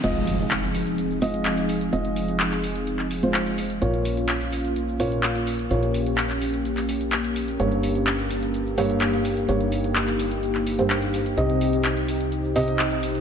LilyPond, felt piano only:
\new Staff \with { instrumentName = "Felt piano" } { \time 4/4 \key f \minor \tempo 4 = 127 <aes f' ees''>2~ <aes f' ees''>8 <aes f' ees''>4. | <aes f' ees''>2~ <aes f' ees''>8. <aes f' c''>4~ <aes f' c''>16 | <bes, bes f' des''>2~ <bes, bes f' des''>8 <bes, bes f' des''>4. | <bes, bes f' des''>2~ <bes, bes f' des''>8. r4 r16 |
<g, bes g' des''>2~ <g, bes g' des''>8 <g, bes g' des''>4. | <g, bes g' des''>2~ <g, bes g' des''>8. <g, bes g' c''>4~ <g, bes g' c''>16 | <c c' g' ees''>2~ <c c' g' ees''>8 <c c' g' ees''>4. | }